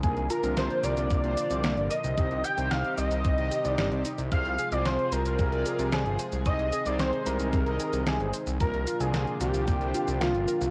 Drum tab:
HH |xxxxxxxxxxxxxxxx|xxxxxxxxxxxxxxxx|xxxxxxxxxxxxxxxx|xxxxxxxxxxxxxxxx|
SH |x-xxx-xxx-xxx-xx|x-xxx-xxx-xxx-xx|x-xxx-xxx-xxx-xx|x-xxx-xxx-xxx-xx|
SD |----o-------o---|----o-------o---|----o-------o---|----o-------o---|
BD |o-------o-------|o-------o-------|o-------o-------|o-------o-------|

HH |xxxxxxxxxxxxxxxx|
SH |x-xxx-xxx-xxx-xx|
SD |----o-------o---|
BD |o-------o-------|